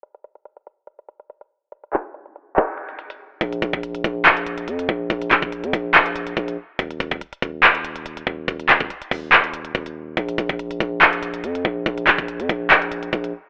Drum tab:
HH |xxxxxxx-xxxxxx--|xxxxxxx-xxxxxx--|xxxxxxx-xxxxxx--|xxxxxxx-xxxxxx--|
CP |----------------|--x-----x-------|--------x-------|--x-----x-------|
BD |----------------|----------------|o-oo--o-------o-|o-oo--o-----o---|

HH |xxxxxxx-xxxxxx--|xxxxxxo-xxxxxx--|xxxxxxx-xxxxxx--|xxxxxxx-xxxxxx--|
CP |--------x-------|--x-----x-------|--------x-------|--x-----x-------|
BD |o-oo--o-------o-|o-oo--o-----o---|o-oo--o-------o-|o-oo--o-----o---|